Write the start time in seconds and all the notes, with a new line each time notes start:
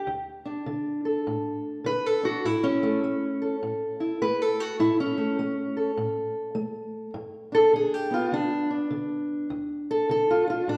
0.07 D2
0.45 D4
0.66 D3
1.05 A4
1.27 A2
1.84 D3 B4
2.06 A4
2.23 D4 F#4
2.45 A2 E4
2.63 C#4
2.83 A3
3.04 A3
3.42 A4
3.63 A2
4.00 E4
4.22 A3 B4
4.42 A4
4.60 F#4
4.79 A2 E4
5.00 C#4
5.18 A3
5.39 A3
5.77 A4
5.97 A2
6.55 A3
7.14 G2
7.52 D4 A4
7.73 D3 G#4
7.94 G4
8.11 B3 F4
8.32 D3 D4
8.71 D4
8.91 D3
9.50 D2
9.91 A4
10.09 D3 A4
10.31 F4
10.47 D4 F4
10.68 A2 D4